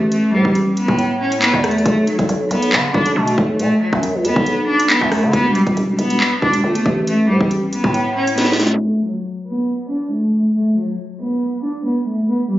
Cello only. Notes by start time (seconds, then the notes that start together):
0.12 A3
0.34 G3
0.77 B3
1.20 C#4
1.42 B3
1.64 A3
1.86 A3
2.08 F#3
2.51 B3
2.94 D4
3.16 A3
3.60 A3
3.81 F#3
4.25 B3
4.68 D4
4.90 B3
5.12 A3
5.33 B3
5.55 G3
5.99 B3
6.42 D4
6.64 A3
7.07 A3
7.29 G3
7.73 B3
8.16 C#4
8.38 B3
8.59 A3
8.81 A3
9.03 F#3
9.47 B3
9.90 D4
10.11 A3
10.55 A3
10.77 F#3
11.20 B3
11.64 D4
11.86 B3
12.07 A3
12.29 B3
12.51 G3